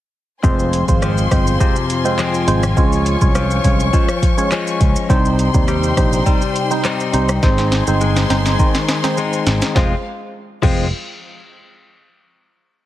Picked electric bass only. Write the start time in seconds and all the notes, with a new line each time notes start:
0.44 F1
0.89 G#1
1.31 G1
2.48 G#1
2.77 C#2
3.21 C2
3.64 C2
4.81 C#2
5.10 C2
5.54 D#2
5.97 A#1
7.14 C2
7.43 G#1
7.87 G1
8.30 G1
9.47 G#1
9.76 F1
10.63 F1